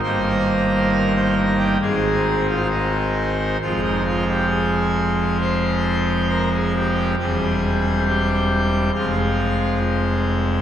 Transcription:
<<
  \new Staff \with { instrumentName = "Pipe organ" } { \time 4/4 \key f \minor \tempo 4 = 68 c''4 bes'16 c''16 bes'16 g'16 aes'8. f'16 ees'4 | f'16 ees'16 f'16 g'16 aes'4 c''4 bes'16 aes'16 g'8 | aes'4 g'4 f'4 r4 | }
  \new Staff \with { instrumentName = "Pipe organ" } { \clef bass \time 4/4 \key f \minor <g,, g, ees bes ees'>2 <aes,, aes, ees aes c'>2 | <f,, f, f aes c'>1 | <e,, e, g c'>2 <f,, f, aes c'>2 | }
>>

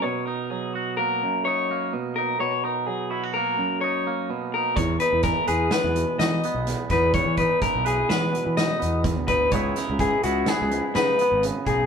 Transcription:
<<
  \new Staff \with { instrumentName = "Clean electric guitar" } { \time 5/4 \key e \lydian \tempo 4 = 126 cis''8 ais'8 gis'8 fis'8 ais'4 cis''4 r8 ais'8 | cis''8 ais'8 gis'8 fis'8 ais'4 cis''4 r8 ais'8 | cis''8 b'8 ais'8 gis'8 b'4 dis''4 r8 b'8 | cis''8 b'8 ais'8 gis'8 b'4 dis''4 r8 b'8 |
cis''8 ais'8 gis'8 fis'8 gis'4 b'4 r8 gis'8 | }
  \new Staff \with { instrumentName = "Clean electric guitar" } { \time 5/4 \key e \lydian << { r8 dis'4 fis'8 ais4 dis'8 ais4 dis'8 | r8 dis'4 e'16 fis'16 ais4 dis'8 ais4 dis'8 | r8 dis'4 b'8 b4 dis'8 b4 dis'8 | r8 dis'4 b'8 b4 dis'8 b4 dis'8 |
<e b dis' e'>8 dis'4 e'8 b4 dis'8 b4 dis'8 | } \\ { b,4 fis4. fis,4. b,4 | b,4 fis4. fis,4. b,4 | e,4 e4. b,4. e,4 | e,4 e4. b,4. e,4 |
cis4 e4. gis,4. cis4 | } >> }
  \new Staff \with { instrumentName = "Fingered electric bass" } { \clef bass \time 5/4 \key e \lydian r1 r4 | r1 r4 | e,8 r16 e,8 r16 e,8 r16 e,8 r16 e8 r16 b,,8 r16 e,8~ | e,16 e8 r8 b,,8. e8 r16 e8 r16 e,8. d,8. |
cis,8 r16 cis,8 r16 cis,8 r16 cis,8 r16 cis8 r16 gis,,8 r16 b,,8 | }
  \new DrumStaff \with { instrumentName = "Drums" } \drummode { \time 5/4 r4 r4 r4 r4 r4 | r4 r4 r4 r4 r4 | <hh bd>8 hh8 <hh bd sn>8 hh8 <hh sn>8 hh8 <hh sn>8 hh8 <hh sn>8 <hh bd sn>8 | <hh bd>8 <hh bd>8 <hh bd>8 hh8 <hh sn>8 hh8 <hh sn>8 hh8 <hh bd sn>8 <hh bd>8 |
<hh bd>8 <hh sn>8 <hh bd>8 hh8 <hh sn>8 hh8 <hh sn>8 hh8 hh8 <hh bd>8 | }
>>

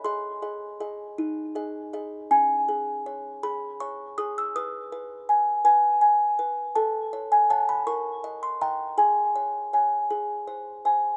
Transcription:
\new Staff \with { instrumentName = "Music box" } { \time 6/8 \key gis \phrygian \tempo 4. = 54 << { <dis'' bis''>4. r4. | gis''4. b''8 cis'''8 dis'''16 e'''16 | dis'''4. gis''4. | a''8. gis''16 a''16 b''16 cis'''8. bis''16 ais''8 |
gis''4. r4. | } \\ { gis'8 <gis' dis''>8 <gis' dis''>8 dis'8 <gis' dis''>8 <gis' dis''>8 | cis'8 gis'8 cis''8 gis'8 cis''8 gis'8 | b'8 b'8 gis''8 b'8 gis''8 b'8 | a'8 cis''8 <cis'' fis''>8 ais'8 dis''8 <dis'' g''>8 |
gis'8 cis''8 <cis'' gis''>8 gis'8 bis'8 <bis' gis''>8 | } >> }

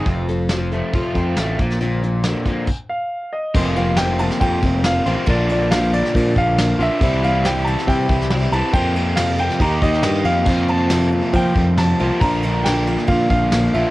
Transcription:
<<
  \new Staff \with { instrumentName = "Grand piano" } { \time 4/4 \key f \major \tempo 4 = 138 r1 | r2 r8 f''4 ees''8~ | ees''8 f''8 g''8 a''8 g''4 f''4 | d''8 d''8 f''8 d''4 f''4 e''8~ |
e''8 f''8 g''8 a''8 g''4. a''8 | g''4 f''8 g''8 bes''8 ees''4 f''8~ | f''8 a''4. g''4 a''4 | bes''4 g''4 f''8 f''4 e''8 | }
  \new Staff \with { instrumentName = "Steel-string acoustic guitar" } { \time 4/4 \key f \major <f, c f c' f' a'>8 <f c' f' a'>8 <f c' f' a'>8 <f c' f' a'>8 <f, c f c' f' a'>8 <f c' f' a'>8 <f c' f' a'>8 <f bes c' f'>8 | <bes, d f bes c' f'>8 <f bes c' f'>8 <f bes c' f'>8 <f bes c' f'>8 r2 | <f, c f bes c' f'>8 <f bes c' f'>8 <f, c f bes c' f'>8 <f bes c' f'>8 <f bes c' f'>8 <f bes c' f'>8 <f, c f bes c' f'>8 <f bes c' f'>8 | <bes, f bes d' f'>8 <bes d' f'>8 <bes, f bes d' f'>8 bes8 <f bes d' f'>8 <bes d' f'>8 <bes, f bes d' f'>8 <bes d' f'>8 |
<c g c' e' g'>8 <c' e' g'>8 <c g c' e' g'>8 <c' e' g'>8 <g c' e' g'>8 <c' e' g'>8 <c g c' e' g'>8 <c' e' g'>8 | <f, c f bes c' f'>8 <f bes c' f'>8 <f, c f bes c' f'>8 <f bes c' f'>8 <ees bes ees' g'>8 <bes ees' g'>8 <ees bes ees' g'>8 <bes ees' g'>8 | <f, c f bes c' f'>8 <f bes c' f'>8 <f, c f bes c' f'>8 <f bes c' f'>8 <f bes c' f'>8 <f bes c' f'>8 <f, c f bes c' f'>8 <f bes c' f'>8 | <bes, f bes d' f'>8 <bes d' f'>8 <bes, f bes d' f'>8 <bes d' f'>8 <f bes d' f'>8 <bes d' f'>8 <bes, f bes d' f'>8 <bes d' f'>8 | }
  \new Staff \with { instrumentName = "Overdriven electric guitar" } { \time 4/4 \key f \major f,4 f8 a8 f'8 c'8 a8 bes,8 | bes,4 d8 bes8 r2 | <f, c f bes c' f'>2.~ <f, c f bes c' f'>8 <f, c f bes c' f'>8 | <bes, d bes d' f'>2.~ <bes, d bes d' f'>8 <bes, d bes d' f'>8 |
<c e g c' e'>2.~ <c e g c' e'>8 <c e g c' e'>8 | <f, c f bes c' f'>2 <ees bes ees' g'>2 | <f, c f bes c' f'>2.~ <f, c f bes c' f'>8 <f, c f bes c' f'>8 | <bes, d bes d' f'>2.~ <bes, d bes d' f'>8 <bes, d bes d' f'>8 | }
  \new Staff \with { instrumentName = "Picked electric bass" } { \clef bass \time 4/4 \key f \major f,,2 r8 f,8 a,,8 bes,,8~ | bes,,4. r2 r8 | f,,2 f,8 f,,4 a,,16 r16 | bes,,2 bes,8 bes,,4 bes,,16 r16 |
c,2 c8 c,4 c,16 r16 | f,2 ees,8 ees,8 g,8 f,8 | f,2 f8 f,4 c,16 r16 | bes,,2 bes,8 bes,,4 bes,,16 r16 | }
  \new DrumStaff \with { instrumentName = "Drums" } \drummode { \time 4/4 <hh bd>8 hh8 <hh sn>8 hh8 <hh bd>8 <hh bd>8 <hh sn>8 <hh bd>16 sn16 | hh8 hh8 <hh sn>8 <hh bd>8 <cymc bd>4 r4 | <cymc bd>8 cymr8 <cymr sn>8 cymr16 sn16 <bd cymr>8 <bd cymr>8 <cymr sn>8 cymr8 | <bd cymr>8 cymr8 <cymr sn>8 cymr16 sn16 <bd cymr>8 <bd cymr>8 <cymr sn>8 cymr8 |
<bd cymr>8 cymr8 <cymr sn>8 cymr16 sn16 <bd cymr>8 <bd cymr>16 sn16 <cymr sn>8 cymr8 | <bd cymr>8 cymr8 <cymr sn>8 cymr16 sn16 <bd cymr>8 <bd cymr>16 sn16 <cymr sn>8 cymr8 | <cymc bd>8 cymr8 <cymr sn>8 cymr8 <bd cymr>8 <bd cymr>8 <cymr sn>8 cymr8 | <bd cymr>8 cymr8 <cymr sn>8 cymr16 sn16 <bd cymr>8 <bd cymr>8 <cymr sn>8 cymr8 | }
>>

